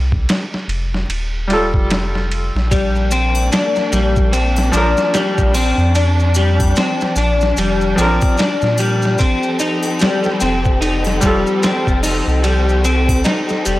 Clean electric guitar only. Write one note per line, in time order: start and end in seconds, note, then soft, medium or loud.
2.71 3.10 G3 medium
3.12 3.51 C4 medium
3.52 3.91 D4 medium
3.92 4.31 G3 medium
4.32 4.72 C4 medium
4.73 5.12 D4 medium
5.14 5.53 G3 medium
5.54 5.94 C4 medium
5.95 6.34 D4 medium
6.36 6.75 G3 medium
6.77 7.16 C4 loud
7.17 7.56 D4 medium
7.58 7.97 G3 medium
7.98 8.37 C4 loud
8.38 8.78 D4 loud
8.79 9.18 G3 medium
9.19 9.58 C4 medium
9.60 9.99 D#4 medium
10.01 10.40 G3 medium
10.41 10.80 C4 medium
10.81 11.20 D#4 loud
11.23 11.62 G3 medium
11.63 12.02 C4 loud
12.03 12.42 D#4 medium
12.43 12.83 G3 medium
12.85 13.24 C4 medium
13.25 13.64 D#4 loud
13.65 13.79 G3 medium